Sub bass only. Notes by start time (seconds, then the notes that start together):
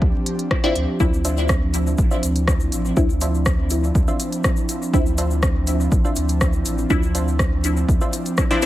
0.02 D2
0.76 D2
1.00 D2
1.98 A1
2.23 D2
2.72 A1
2.97 D2
3.95 D2
4.94 D2
5.92 A1
6.17 D2
6.66 A1
6.90 D2
7.89 D2